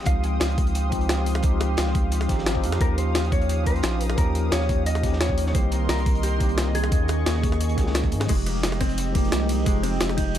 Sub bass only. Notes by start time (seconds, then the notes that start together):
0.06 C#2
0.41 C#2
1.44 C#2
1.78 C#2
2.29 G#1
2.64 F2
2.81 D#2
3.83 A#1
4.18 D#2
4.52 D#2
5.55 C2
5.89 C2
6.92 D#2
7.26 D#2
7.78 C#2
8.12 G#2
8.29 F1
9.32 C2
9.66 F1
10.01 F1